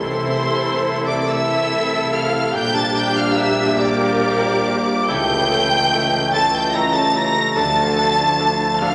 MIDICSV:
0, 0, Header, 1, 11, 480
1, 0, Start_track
1, 0, Tempo, 857143
1, 8, Time_signature, 6, 3, 24, 8
1, 968, Tempo, 831025
1, 2408, Tempo, 881057
1, 2888, Tempo, 826446
1, 5121, End_track
2, 0, Start_track
2, 0, Title_t, "Violin section"
2, 0, Program_c, 0, 48
2, 0, Note_on_c, 0, 84, 113
2, 580, Note_off_c, 0, 84, 0
2, 608, Note_on_c, 0, 86, 100
2, 712, Note_on_c, 0, 88, 116
2, 729, Note_off_c, 0, 86, 0
2, 1200, Note_off_c, 0, 88, 0
2, 1206, Note_on_c, 0, 89, 110
2, 1448, Note_off_c, 0, 89, 0
2, 1452, Note_on_c, 0, 91, 115
2, 1567, Note_off_c, 0, 91, 0
2, 1571, Note_on_c, 0, 93, 113
2, 1688, Note_off_c, 0, 93, 0
2, 1688, Note_on_c, 0, 91, 119
2, 1805, Note_off_c, 0, 91, 0
2, 1812, Note_on_c, 0, 89, 111
2, 1921, Note_on_c, 0, 88, 116
2, 1926, Note_off_c, 0, 89, 0
2, 2160, Note_off_c, 0, 88, 0
2, 2161, Note_on_c, 0, 86, 112
2, 2880, Note_on_c, 0, 91, 127
2, 2888, Note_off_c, 0, 86, 0
2, 3604, Note_off_c, 0, 91, 0
2, 3607, Note_on_c, 0, 93, 122
2, 3722, Note_off_c, 0, 93, 0
2, 3728, Note_on_c, 0, 91, 112
2, 3837, Note_on_c, 0, 94, 108
2, 3843, Note_off_c, 0, 91, 0
2, 3956, Note_off_c, 0, 94, 0
2, 3960, Note_on_c, 0, 93, 117
2, 4077, Note_off_c, 0, 93, 0
2, 4089, Note_on_c, 0, 94, 120
2, 4316, Note_on_c, 0, 93, 122
2, 4320, Note_off_c, 0, 94, 0
2, 5033, Note_off_c, 0, 93, 0
2, 5046, Note_on_c, 0, 89, 127
2, 5121, Note_off_c, 0, 89, 0
2, 5121, End_track
3, 0, Start_track
3, 0, Title_t, "Flute section"
3, 0, Program_c, 1, 73
3, 0, Note_on_c, 1, 72, 96
3, 582, Note_off_c, 1, 72, 0
3, 607, Note_on_c, 1, 74, 86
3, 722, Note_on_c, 1, 76, 104
3, 729, Note_off_c, 1, 74, 0
3, 1194, Note_on_c, 1, 77, 99
3, 1206, Note_off_c, 1, 76, 0
3, 1431, Note_on_c, 1, 79, 115
3, 1442, Note_off_c, 1, 77, 0
3, 1542, Note_on_c, 1, 81, 104
3, 1557, Note_off_c, 1, 79, 0
3, 1674, Note_off_c, 1, 81, 0
3, 1676, Note_on_c, 1, 79, 107
3, 1782, Note_on_c, 1, 77, 92
3, 1796, Note_off_c, 1, 79, 0
3, 1908, Note_off_c, 1, 77, 0
3, 1912, Note_on_c, 1, 76, 91
3, 2155, Note_off_c, 1, 76, 0
3, 2156, Note_on_c, 1, 74, 97
3, 2747, Note_off_c, 1, 74, 0
3, 2885, Note_on_c, 1, 79, 125
3, 3592, Note_off_c, 1, 79, 0
3, 3610, Note_on_c, 1, 81, 125
3, 3710, Note_on_c, 1, 79, 106
3, 3726, Note_off_c, 1, 81, 0
3, 3834, Note_off_c, 1, 79, 0
3, 3845, Note_on_c, 1, 82, 107
3, 3954, Note_on_c, 1, 81, 97
3, 3961, Note_off_c, 1, 82, 0
3, 4064, Note_on_c, 1, 82, 106
3, 4074, Note_off_c, 1, 81, 0
3, 4302, Note_on_c, 1, 81, 121
3, 4308, Note_off_c, 1, 82, 0
3, 5026, Note_off_c, 1, 81, 0
3, 5049, Note_on_c, 1, 77, 113
3, 5121, Note_off_c, 1, 77, 0
3, 5121, End_track
4, 0, Start_track
4, 0, Title_t, "Violin section"
4, 0, Program_c, 2, 48
4, 8, Note_on_c, 2, 72, 95
4, 588, Note_off_c, 2, 72, 0
4, 608, Note_on_c, 2, 74, 88
4, 729, Note_off_c, 2, 74, 0
4, 740, Note_on_c, 2, 76, 104
4, 1209, Note_on_c, 2, 77, 99
4, 1215, Note_off_c, 2, 76, 0
4, 1444, Note_off_c, 2, 77, 0
4, 1451, Note_on_c, 2, 79, 113
4, 1568, Note_on_c, 2, 81, 100
4, 1570, Note_off_c, 2, 79, 0
4, 1686, Note_off_c, 2, 81, 0
4, 1690, Note_on_c, 2, 79, 113
4, 1806, Note_off_c, 2, 79, 0
4, 1808, Note_on_c, 2, 77, 100
4, 1924, Note_off_c, 2, 77, 0
4, 1927, Note_on_c, 2, 76, 100
4, 2160, Note_on_c, 2, 74, 95
4, 2163, Note_off_c, 2, 76, 0
4, 2888, Note_off_c, 2, 74, 0
4, 2892, Note_on_c, 2, 79, 123
4, 3607, Note_on_c, 2, 81, 117
4, 3610, Note_off_c, 2, 79, 0
4, 3722, Note_off_c, 2, 81, 0
4, 3729, Note_on_c, 2, 79, 102
4, 3844, Note_off_c, 2, 79, 0
4, 3852, Note_on_c, 2, 82, 104
4, 3964, Note_off_c, 2, 82, 0
4, 3969, Note_on_c, 2, 81, 102
4, 4078, Note_on_c, 2, 82, 111
4, 4082, Note_off_c, 2, 81, 0
4, 4315, Note_off_c, 2, 82, 0
4, 4318, Note_on_c, 2, 81, 117
4, 5034, Note_off_c, 2, 81, 0
4, 5049, Note_on_c, 2, 77, 111
4, 5121, Note_off_c, 2, 77, 0
4, 5121, End_track
5, 0, Start_track
5, 0, Title_t, "Viola section"
5, 0, Program_c, 3, 48
5, 0, Note_on_c, 3, 69, 80
5, 1, Note_on_c, 3, 64, 82
5, 712, Note_off_c, 3, 64, 0
5, 712, Note_off_c, 3, 69, 0
5, 723, Note_on_c, 3, 64, 84
5, 725, Note_on_c, 3, 69, 90
5, 1431, Note_off_c, 3, 64, 0
5, 1432, Note_off_c, 3, 69, 0
5, 1440, Note_on_c, 3, 62, 87
5, 1441, Note_on_c, 3, 67, 90
5, 2141, Note_off_c, 3, 62, 0
5, 2142, Note_off_c, 3, 67, 0
5, 2150, Note_on_c, 3, 67, 99
5, 2150, Note_on_c, 3, 70, 94
5, 2874, Note_on_c, 3, 64, 91
5, 2878, Note_on_c, 3, 69, 89
5, 2883, Note_off_c, 3, 67, 0
5, 2883, Note_off_c, 3, 70, 0
5, 2920, Note_off_c, 3, 64, 0
5, 2924, Note_off_c, 3, 69, 0
5, 3117, Note_on_c, 3, 64, 77
5, 3118, Note_on_c, 3, 69, 80
5, 3164, Note_off_c, 3, 64, 0
5, 3164, Note_off_c, 3, 69, 0
5, 3368, Note_on_c, 3, 69, 74
5, 3369, Note_on_c, 3, 64, 76
5, 3414, Note_off_c, 3, 69, 0
5, 3416, Note_off_c, 3, 64, 0
5, 3602, Note_on_c, 3, 64, 85
5, 3608, Note_on_c, 3, 69, 87
5, 3648, Note_off_c, 3, 64, 0
5, 3655, Note_off_c, 3, 69, 0
5, 3837, Note_on_c, 3, 64, 75
5, 3843, Note_on_c, 3, 69, 76
5, 3884, Note_off_c, 3, 64, 0
5, 3889, Note_off_c, 3, 69, 0
5, 4074, Note_on_c, 3, 69, 69
5, 4077, Note_on_c, 3, 64, 73
5, 4120, Note_off_c, 3, 69, 0
5, 4123, Note_off_c, 3, 64, 0
5, 4308, Note_on_c, 3, 69, 86
5, 4310, Note_on_c, 3, 62, 82
5, 4354, Note_off_c, 3, 69, 0
5, 4357, Note_off_c, 3, 62, 0
5, 4556, Note_on_c, 3, 69, 74
5, 4559, Note_on_c, 3, 62, 76
5, 4602, Note_off_c, 3, 69, 0
5, 4605, Note_off_c, 3, 62, 0
5, 4798, Note_on_c, 3, 62, 74
5, 4801, Note_on_c, 3, 69, 72
5, 4844, Note_off_c, 3, 62, 0
5, 4847, Note_off_c, 3, 69, 0
5, 5041, Note_on_c, 3, 62, 83
5, 5042, Note_on_c, 3, 69, 83
5, 5087, Note_off_c, 3, 62, 0
5, 5089, Note_off_c, 3, 69, 0
5, 5121, End_track
6, 0, Start_track
6, 0, Title_t, "French horn section"
6, 0, Program_c, 4, 60
6, 0, Note_on_c, 4, 69, 80
6, 1, Note_on_c, 4, 57, 78
6, 1423, Note_off_c, 4, 57, 0
6, 1423, Note_off_c, 4, 69, 0
6, 1440, Note_on_c, 4, 67, 87
6, 1444, Note_on_c, 4, 62, 88
6, 2785, Note_off_c, 4, 62, 0
6, 2785, Note_off_c, 4, 67, 0
6, 2878, Note_on_c, 4, 69, 96
6, 2880, Note_on_c, 4, 61, 92
6, 4287, Note_off_c, 4, 61, 0
6, 4298, Note_on_c, 4, 62, 85
6, 5121, Note_off_c, 4, 62, 0
6, 5121, Note_off_c, 4, 69, 0
6, 5121, End_track
7, 0, Start_track
7, 0, Title_t, "Harp"
7, 0, Program_c, 5, 46
7, 0, Note_on_c, 5, 57, 58
7, 0, Note_on_c, 5, 64, 59
7, 0, Note_on_c, 5, 69, 62
7, 8, Note_on_c, 5, 48, 76
7, 116, Note_off_c, 5, 64, 0
7, 123, Note_on_c, 5, 64, 60
7, 232, Note_off_c, 5, 57, 0
7, 239, Note_on_c, 5, 57, 64
7, 358, Note_on_c, 5, 58, 55
7, 469, Note_off_c, 5, 57, 0
7, 476, Note_on_c, 5, 57, 63
7, 568, Note_off_c, 5, 58, 0
7, 598, Note_on_c, 5, 58, 56
7, 712, Note_off_c, 5, 57, 0
7, 719, Note_on_c, 5, 57, 65
7, 808, Note_off_c, 5, 58, 0
7, 838, Note_on_c, 5, 60, 61
7, 950, Note_off_c, 5, 57, 0
7, 956, Note_on_c, 5, 57, 69
7, 1074, Note_off_c, 5, 69, 0
7, 1081, Note_on_c, 5, 69, 64
7, 1197, Note_on_c, 5, 67, 64
7, 1316, Note_off_c, 5, 69, 0
7, 1323, Note_on_c, 5, 69, 73
7, 1408, Note_off_c, 5, 67, 0
7, 1438, Note_on_c, 5, 46, 89
7, 1463, Note_off_c, 5, 57, 0
7, 1463, Note_off_c, 5, 60, 0
7, 1465, Note_off_c, 5, 69, 0
7, 1466, Note_off_c, 5, 64, 0
7, 1469, Note_off_c, 5, 48, 0
7, 1555, Note_on_c, 5, 62, 65
7, 1679, Note_on_c, 5, 58, 68
7, 1796, Note_on_c, 5, 60, 62
7, 1910, Note_off_c, 5, 58, 0
7, 1917, Note_on_c, 5, 58, 68
7, 2000, Note_off_c, 5, 60, 0
7, 2041, Note_on_c, 5, 60, 61
7, 2152, Note_off_c, 5, 58, 0
7, 2159, Note_on_c, 5, 58, 74
7, 2246, Note_off_c, 5, 60, 0
7, 2284, Note_on_c, 5, 55, 65
7, 2403, Note_off_c, 5, 58, 0
7, 2409, Note_on_c, 5, 58, 70
7, 2532, Note_on_c, 5, 67, 65
7, 2650, Note_on_c, 5, 65, 67
7, 2764, Note_off_c, 5, 67, 0
7, 2770, Note_on_c, 5, 67, 75
7, 2853, Note_off_c, 5, 65, 0
7, 2886, Note_on_c, 5, 49, 85
7, 2901, Note_off_c, 5, 62, 0
7, 2902, Note_off_c, 5, 46, 0
7, 2909, Note_off_c, 5, 58, 0
7, 3008, Note_on_c, 5, 64, 72
7, 3125, Note_on_c, 5, 57, 67
7, 3248, Note_on_c, 5, 58, 62
7, 3359, Note_off_c, 5, 57, 0
7, 3366, Note_on_c, 5, 57, 71
7, 3453, Note_off_c, 5, 58, 0
7, 3487, Note_on_c, 5, 58, 66
7, 3595, Note_off_c, 5, 57, 0
7, 3602, Note_on_c, 5, 57, 65
7, 3688, Note_off_c, 5, 58, 0
7, 3712, Note_off_c, 5, 55, 0
7, 3719, Note_on_c, 5, 55, 67
7, 3826, Note_off_c, 5, 57, 0
7, 3833, Note_on_c, 5, 57, 71
7, 3954, Note_on_c, 5, 69, 68
7, 4064, Note_off_c, 5, 67, 0
7, 4071, Note_on_c, 5, 67, 62
7, 4185, Note_off_c, 5, 69, 0
7, 4192, Note_on_c, 5, 69, 72
7, 4275, Note_off_c, 5, 67, 0
7, 4313, Note_on_c, 5, 50, 89
7, 4330, Note_off_c, 5, 55, 0
7, 4332, Note_off_c, 5, 49, 0
7, 4332, Note_off_c, 5, 64, 0
7, 4430, Note_on_c, 5, 65, 73
7, 4548, Note_on_c, 5, 62, 66
7, 4674, Note_on_c, 5, 64, 58
7, 4787, Note_off_c, 5, 62, 0
7, 4794, Note_on_c, 5, 62, 63
7, 4884, Note_off_c, 5, 64, 0
7, 4917, Note_on_c, 5, 64, 61
7, 5034, Note_off_c, 5, 62, 0
7, 5041, Note_on_c, 5, 62, 66
7, 5121, Note_off_c, 5, 50, 0
7, 5121, Note_off_c, 5, 57, 0
7, 5121, Note_off_c, 5, 62, 0
7, 5121, Note_off_c, 5, 64, 0
7, 5121, Note_off_c, 5, 65, 0
7, 5121, Note_off_c, 5, 69, 0
7, 5121, End_track
8, 0, Start_track
8, 0, Title_t, "Trombone section"
8, 0, Program_c, 6, 61
8, 0, Note_on_c, 6, 52, 78
8, 5, Note_on_c, 6, 57, 84
8, 1423, Note_off_c, 6, 52, 0
8, 1425, Note_off_c, 6, 57, 0
8, 1436, Note_on_c, 6, 58, 89
8, 1438, Note_on_c, 6, 55, 90
8, 2861, Note_off_c, 6, 55, 0
8, 2882, Note_off_c, 6, 58, 0
8, 2884, Note_on_c, 6, 52, 99
8, 2888, Note_on_c, 6, 57, 96
8, 4312, Note_off_c, 6, 52, 0
8, 4314, Note_on_c, 6, 53, 91
8, 5121, Note_off_c, 6, 53, 0
8, 5121, Note_off_c, 6, 57, 0
8, 5121, End_track
9, 0, Start_track
9, 0, Title_t, "Cello section"
9, 0, Program_c, 7, 48
9, 5, Note_on_c, 7, 48, 86
9, 1425, Note_off_c, 7, 48, 0
9, 1447, Note_on_c, 7, 46, 96
9, 2865, Note_off_c, 7, 46, 0
9, 2885, Note_on_c, 7, 49, 107
9, 3523, Note_off_c, 7, 49, 0
9, 3599, Note_on_c, 7, 49, 105
9, 4225, Note_off_c, 7, 49, 0
9, 4314, Note_on_c, 7, 50, 105
9, 4959, Note_off_c, 7, 50, 0
9, 5043, Note_on_c, 7, 50, 104
9, 5121, Note_off_c, 7, 50, 0
9, 5121, End_track
10, 0, Start_track
10, 0, Title_t, "Double bass section"
10, 0, Program_c, 8, 48
10, 4, Note_on_c, 8, 36, 92
10, 1425, Note_off_c, 8, 36, 0
10, 1450, Note_on_c, 8, 34, 96
10, 2867, Note_off_c, 8, 34, 0
10, 2886, Note_on_c, 8, 37, 110
10, 3523, Note_off_c, 8, 37, 0
10, 3606, Note_on_c, 8, 37, 91
10, 4229, Note_off_c, 8, 37, 0
10, 4315, Note_on_c, 8, 38, 99
10, 4959, Note_off_c, 8, 38, 0
10, 5047, Note_on_c, 8, 38, 88
10, 5121, Note_off_c, 8, 38, 0
10, 5121, End_track
11, 0, Start_track
11, 0, Title_t, "Tuba"
11, 0, Program_c, 10, 58
11, 0, Note_on_c, 10, 36, 82
11, 1339, Note_off_c, 10, 36, 0
11, 1437, Note_on_c, 10, 34, 92
11, 2861, Note_off_c, 10, 34, 0
11, 2888, Note_on_c, 10, 37, 102
11, 3525, Note_off_c, 10, 37, 0
11, 3608, Note_on_c, 10, 37, 97
11, 4230, Note_off_c, 10, 37, 0
11, 4311, Note_on_c, 10, 38, 97
11, 4958, Note_off_c, 10, 38, 0
11, 5045, Note_on_c, 10, 38, 102
11, 5121, Note_off_c, 10, 38, 0
11, 5121, End_track
0, 0, End_of_file